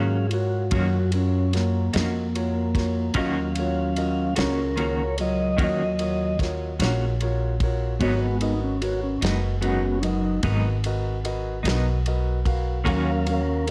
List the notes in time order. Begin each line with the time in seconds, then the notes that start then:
Already playing: G#2 D#3 F#3 A#3 C#4 F4 F#4 G#4 A#4 C#5 F5
0.29 F4 F#4 A#4 C#5, ride
0.33 F#4
0.71 F#2 D#3 A#3 C#4 F4 F#4 A#4 C#5, kick, ride
1.12 C#4 F4 F#4 A#4 C#5, ride
1.52 F4 F#4 A#4 C#5, snare, ride
1.56 A#3
1.93 F2 A3 A#3 C#4 F4 F#4 A#4 D#5, snare, ride
1.99 A#3
2.35 F4 F#4 A#4 C#5, ride
2.75 F4 F#4 A#4 C#5, kick, snare, ride
3.14 D#2 D#3 F#3 A#3 C#4 F4 F#4 A#4 D#5, kick, ride
3.19 C#4 F5
3.55 F4 F#4 A#4 C#5, ride
3.96 F4 F#4 A#4 D#5, ride
4.36 C#2 A#3 C#4 F4 F#4 A4 A#4 C#5, snare, ride
4.40 C#4 A#4
4.76 D#3 A#3 C#4 F4 F#4 A#4 C#5, ride
5.18 F#3 F4 F#4 A#4 C#5 D#5, ride
5.57 D#2 D#3 A#3 C#4 F4 F#4 A#4 C#5, kick, ride
5.62 F#3 D#5
5.99 F4 F#4 A#4 C#5, ride
6.39 F4 F#4 A#4 C#5, kick, snare, ride
6.79 A#1 A#3 C#4 F4 F#4 A#4 C#5, snare, ride
7.21 F4 F#4 A#4 C#5, ride
7.60 F4 F#4 A#4 C#5, kick, ride
7.99 G#1 G#2 F#3 G#3 B3 D#4 F#4 A#4 B4 C#5 D#5, kick, ride
8.16 F#4
8.41 D#4 F#4 A#4 B4 D#5, ride
8.64 C#4
8.82 F#4 A#4 B4 C#5, ride
9.04 C#4
9.21 F#1 F#3 G#3 B3 D#4 F#4 A#4 B4 D#5, snare, ride
9.61 G#2 F#3 G#3 B3 C#4 D#4 F#4 A#4 B4, ride
9.65 F#5
10.02 F#3 D#4 F#4 A#4 B4 D#5, ride
10.43 G#1 G#2 F#3 B3 D#4 F#4 A#4 B4 D#5, kick, ride
10.84 F#4 A#4 B4 D#5, ride
11.24 F#4 A#4 B4 D#5, ride
11.63 B1 F#3 B3 D#4 F#4 A#4 B4 D#5, ride
11.68 snare
12.06 F#4 A#4 B4 D#5, ride
12.45 F#4 A#4 B4 F5, kick, ride
12.84 D#2 D#3 A#3 C#4 F#4 A4 A#4 C#5 F5, kick, ride
12.88 F#3 A#4 F5
13.26 C#4 F#4 A#4 C#5 F5, ride
13.31 A#4
13.67 F#4 A#4, ride